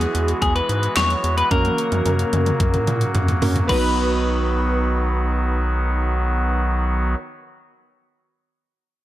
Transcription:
0.00 1.49 E3 medium
0.00 1.49 G#3 medium
0.00 1.47 B3 medium
0.00 1.47 E4 medium
0.00 1.47 F#4 medium
0.00 3.65 F#4 medium
0.00 0.38 G#4 medium
0.00 1.47 G#4 medium
0.00 closed hi-hat medium
0.15 0.34 E2 loud
0.15 closed hi-hat medium
0.28 closed hi-hat medium
0.42 0.61 E2 loud
0.42 0.55 G#4 medium
0.42 kick medium
0.42 closed hi-hat medium
0.56 0.94 B4 loud
0.56 closed hi-hat soft
0.69 0.88 G#2 medium
0.69 closed hi-hat medium
0.83 closed hi-hat medium
0.97 1.16 E2 loud
0.97 1.35 C#5 loud
0.97 snare loud
0.97 clap medium
0.97 closed hi-hat medium
1.10 closed hi-hat soft
1.24 1.43 E2 loud
1.24 closed hi-hat medium
1.38 1.51 B4 loud
1.38 closed hi-hat medium
1.51 1.70 F#2 loud
1.51 3.67 C#3 medium
1.51 3.67 F#3 medium
1.51 3.67 A#3 medium
1.51 3.38 A#3 medium
1.51 3.38 C#4 medium
1.51 3.38 F#4 medium
1.51 3.11 A#4 medium
1.51 3.38 A#4 medium
1.51 kick loud
1.51 closed hi-hat medium
1.51 high tom medium
1.65 closed hi-hat medium
1.65 high tom medium
1.78 closed hi-hat medium
1.92 2.02 F#2 loud
1.92 closed hi-hat medium
1.92 high tom medium
2.06 2.25 F#2 loud
2.06 closed hi-hat medium
2.06 mid tom medium
2.19 closed hi-hat medium
2.33 2.52 F#2 loud
2.33 closed hi-hat medium
2.33 mid tom medium
2.46 closed hi-hat medium
2.46 mid tom medium
2.60 2.79 F#2 loud
2.60 kick loud
2.60 closed hi-hat medium
2.74 closed hi-hat soft
2.74 mid tom medium
2.87 3.07 A#2 medium
2.87 closed hi-hat medium
2.87 mid tom medium
3.01 closed hi-hat medium
3.15 3.34 F#2 loud
3.15 closed hi-hat medium
3.15 floor tom loud
3.28 closed hi-hat soft
3.28 floor tom medium
3.42 3.61 F#2 loud
3.42 3.69 A#3 medium
3.42 3.69 C#4 medium
3.42 3.69 F#4 medium
3.42 3.69 A#4 medium
3.42 floor tom loud
3.42 open hi-hat medium
3.56 closed hi-hat medium
3.56 floor tom loud
3.67 7.15 B1 loud
3.67 7.15 D#3 medium
3.67 7.15 F#3 medium
3.67 7.13 B3 medium
3.67 7.15 B3 medium
3.67 7.14 D#4 medium
3.67 7.15 F#4 medium
3.67 7.16 F#4 medium
3.67 7.15 B4 medium
3.67 kick loud
3.67 crash medium
3.71 7.17 B4 medium

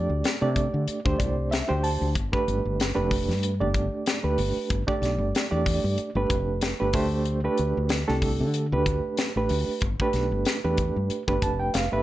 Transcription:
0.00 0.35 A3 medium
0.00 0.35 D4 medium
0.00 0.35 G4 medium
0.00 0.35 D5 medium
0.09 0.21 D2 medium
0.24 snare loud
0.24 closed hi-hat medium
0.41 0.68 C3 medium
0.41 0.99 A3 medium
0.41 0.99 D4 medium
0.41 0.99 G4 medium
0.41 0.99 D5 medium
0.56 kick medium
0.56 closed hi-hat medium
0.74 0.86 D3 medium
0.88 muted fretless electric bass stroke soft
0.88 closed hi-hat medium
1.05 1.17 D2 medium
1.05 1.63 A3 medium
1.05 1.62 D4 medium
1.05 1.62 G4 medium
1.05 1.63 C5 medium
1.05 kick medium
1.19 1.61 C2 medium
1.19 1.49 D5 medium
1.19 kick medium
1.19 closed hi-hat soft
1.51 1.68 E5 medium
1.51 snare loud
1.51 closed hi-hat medium
1.68 1.96 D2 medium
1.68 2.15 A3 medium
1.68 2.15 D4 medium
1.68 2.15 G4 medium
1.68 2.15 C5 medium
1.68 1.82 G5 medium
1.83 2.13 A5 medium
1.83 open hi-hat medium
2.01 2.13 D2 medium
2.15 2.30 G1 medium
2.15 kick loud
2.15 closed hi-hat medium
2.32 2.90 A3 medium
2.32 2.90 D4 medium
2.32 2.90 G4 medium
2.32 2.90 B4 medium
2.32 kick medium
2.48 2.62 G1 medium
2.48 closed hi-hat medium
2.65 2.92 G1 medium
2.80 snare medium
2.80 closed hi-hat medium
2.95 3.30 F1 medium
2.95 3.53 A3 medium
2.95 3.53 D4 medium
2.95 3.53 G4 medium
2.95 3.53 B4 medium
3.11 kick medium
3.11 open hi-hat medium
3.28 3.62 G2 medium
3.28 snare soft
3.43 closed hi-hat medium
3.60 3.88 G1 medium
3.60 4.18 A3 medium
3.60 4.18 D4 medium
3.60 4.18 G4 medium
3.60 4.18 D5 medium
3.74 kick medium
3.74 closed hi-hat medium
4.06 snare loud
4.06 closed hi-hat medium
4.23 4.36 D2 medium
4.23 4.81 A3 medium
4.23 4.81 D4 medium
4.23 4.82 G4 medium
4.23 4.82 B4 medium
4.38 4.53 G1 medium
4.38 open hi-hat medium
4.70 4.85 G1 medium
4.70 kick medium
4.70 closed hi-hat medium
4.87 5.45 A3 medium
4.87 5.45 D4 medium
4.87 5.45 G4 medium
4.87 5.45 D5 medium
4.87 muted fretless electric bass stroke soft
4.87 kick medium
5.02 5.17 B1 medium
5.02 snare soft
5.02 closed hi-hat medium
5.18 5.31 G1 medium
5.35 snare loud
5.35 closed hi-hat medium
5.51 5.79 E2 medium
5.51 6.09 A3 medium
5.51 6.09 D4 medium
5.51 6.09 G4 medium
5.51 6.09 D5 medium
5.66 kick medium
5.66 open hi-hat medium
5.84 5.96 G2 medium
5.98 muted fretless electric bass stroke soft
5.98 closed hi-hat medium
6.15 6.28 G1 medium
6.15 6.74 A3 medium
6.15 6.74 D4 medium
6.15 6.74 G4 medium
6.15 6.74 B4 medium
6.30 6.72 F1 medium
6.30 kick medium
6.30 closed hi-hat medium
6.61 snare loud
6.61 closed hi-hat medium
6.80 6.93 G1 medium
6.80 6.93 A3 medium
6.80 6.94 D4 medium
6.80 6.94 G4 medium
6.80 6.94 B4 medium
6.93 7.47 D2 medium
6.93 7.39 A3 medium
6.93 7.39 D4 medium
6.93 7.39 G4 medium
6.93 7.39 C5 medium
6.93 kick medium
6.93 open hi-hat medium
7.25 closed hi-hat medium
7.44 8.02 A3 medium
7.44 8.01 D4 medium
7.44 8.02 G4 medium
7.44 8.02 B4 medium
7.58 7.74 D2 medium
7.58 closed hi-hat medium
7.77 8.04 D2 medium
7.89 snare loud
7.89 closed hi-hat medium
8.08 8.42 C2 medium
8.08 8.65 A3 medium
8.08 8.66 D4 medium
8.08 8.66 G4 medium
8.08 8.65 A4 medium
8.08 snare soft
8.22 kick medium
8.22 open hi-hat medium
8.40 8.74 D3 medium
8.54 closed hi-hat medium
8.72 8.99 D2 medium
8.72 9.30 A3 medium
8.72 9.30 D4 medium
8.72 9.30 G4 medium
8.72 9.30 B4 medium
8.86 kick medium
8.86 closed hi-hat medium
9.17 snare loud
9.17 closed hi-hat medium
9.36 9.48 A1 medium
9.36 9.83 A3 medium
9.36 9.83 D4 medium
9.36 9.83 G4 medium
9.36 9.83 B4 medium
9.49 9.65 D2 medium
9.49 open hi-hat medium
9.81 9.97 G1 medium
9.81 kick loud
9.81 closed hi-hat medium
9.99 10.58 A3 medium
9.99 10.58 D4 medium
9.99 10.58 G4 medium
9.99 10.58 B4 medium
9.99 muted fretless electric bass stroke soft
9.99 kick medium
10.13 10.29 B1 medium
10.13 snare soft
10.13 closed hi-hat medium
10.31 10.44 G1 medium
10.45 snare loud
10.45 closed hi-hat medium
10.64 10.91 E2 medium
10.64 11.22 A3 medium
10.64 11.22 D4 medium
10.64 11.22 G4 medium
10.64 11.22 B4 medium
10.77 kick medium
10.77 closed hi-hat medium
10.96 11.08 G2 medium
11.10 muted fretless electric bass stroke soft
11.10 closed hi-hat medium
11.28 11.40 G1 medium
11.28 11.85 A3 medium
11.28 11.86 D4 medium
11.28 11.86 G4 medium
11.28 11.86 B4 medium
11.28 kick medium
11.42 11.69 F1 medium
11.42 11.59 A5 medium
11.42 kick medium
11.42 closed hi-hat medium
11.60 11.73 G5 medium
11.74 11.91 F1 medium
11.74 11.91 F5 medium
11.74 snare loud
11.74 closed hi-hat medium
11.92 12.03 G1 medium
11.92 12.03 A3 medium
11.92 12.03 D4 medium
11.92 12.03 G4 medium
11.92 12.03 B4 medium
11.92 12.03 E5 medium

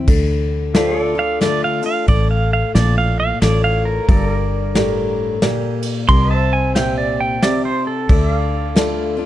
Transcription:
0.08 1.71 D2 medium
0.08 0.73 D3 medium
0.08 kick loud
0.08 crash loud
0.74 1.13 D3 medium
0.74 1.14 A3 medium
0.74 1.14 D4 medium
0.74 1.31 F4 medium
0.74 1.14 F4 medium
0.74 0.99 G4 medium
0.74 1.31 A4 medium
0.74 1.01 C5 medium
0.74 1.31 D5 medium
0.74 snare medium
0.74 ride medium
0.99 4.05 A4 medium
0.99 4.06 D5 medium
1.15 1.41 D4 soft
1.15 1.40 F4 medium
1.15 1.41 F5 loud
1.41 1.80 D3 medium
1.41 1.80 A3 medium
1.41 1.81 D4 medium
1.41 1.98 F4 medium
1.41 1.80 F4 medium
1.41 1.98 A4 medium
1.41 1.63 D5 medium
1.41 1.98 D5 medium
1.41 snare medium
1.41 ride medium
1.64 1.85 F5 medium
1.82 2.08 D4 soft
1.82 2.07 F4 medium
1.82 ride medium
1.86 2.07 F5 medium
2.08 2.63 A1 medium
2.08 3.36 A2 medium
2.08 2.30 D5 medium
2.08 kick medium
2.08 ride medium
2.31 2.52 F5 medium
2.53 2.74 F5 medium
2.74 3.32 A#1 medium
2.74 3.39 A#2 medium
2.74 3.31 F4 medium
2.74 3.31 A4 medium
2.74 3.31 D5 medium
2.74 2.96 D5 medium
2.74 snare medium
2.74 ride medium
2.98 3.19 F5 medium
3.20 3.41 F5 medium
3.42 3.99 A1 medium
3.42 4.06 A2 medium
3.42 3.98 F4 medium
3.42 3.98 A4 medium
3.42 3.63 D5 medium
3.42 3.99 D5 medium
3.42 snare medium
3.42 ride medium
3.64 3.86 F5 medium
3.85 5.16 A#4 medium
4.08 5.72 G1 medium
4.08 5.37 G2 medium
4.08 4.29 A4 medium
4.08 6.08 D5 medium
4.08 kick loud
4.08 ride medium
4.29 6.07 A#4 medium
4.75 5.40 A2 medium
4.75 5.32 G4 medium
4.75 5.32 A#4 medium
4.75 5.32 D5 medium
4.75 snare medium
4.75 ride medium
5.42 6.07 A#2 medium
5.42 5.99 G4 medium
5.42 5.99 A#4 medium
5.42 5.99 D5 medium
5.42 snare medium
5.42 ride medium
5.82 ride medium
6.08 7.72 C2 medium
6.08 7.37 C3 medium
6.08 6.34 A#4 medium
6.08 6.35 D5 medium
6.08 6.30 C6 loud
6.08 kick loud
6.08 ride medium
6.31 8.07 C5 medium
6.31 8.08 E5 medium
6.31 6.53 A5 medium
6.53 6.75 G#5 medium
6.75 7.40 A#2 medium
6.75 7.32 G4 medium
6.75 7.33 C5 medium
6.75 7.33 E5 medium
6.75 6.97 G5 medium
6.75 snare medium
6.75 ride medium
6.98 7.20 D5 medium
7.20 7.42 G5 medium
7.42 8.07 C3 medium
7.42 7.99 G4 medium
7.42 7.99 C5 medium
7.42 7.65 D5 medium
7.42 7.99 E5 medium
7.42 snare medium
7.42 ride medium
7.65 7.87 C5 medium
7.87 9.26 A4 medium
8.09 9.26 D2 medium
8.09 8.74 D3 medium
8.09 9.26 D5 medium
8.09 8.30 E5 medium
8.09 kick loud
8.09 ride medium
8.30 9.26 F5 medium
8.75 9.15 D3 medium
8.75 9.15 A3 medium
8.75 9.16 D4 loud
8.75 9.26 F4 medium
8.75 9.16 F4 medium
8.75 9.26 A4 medium
8.75 9.26 D5 medium
8.75 snare loud
8.75 ride medium
9.17 9.26 D4 soft
9.17 9.26 F4 medium

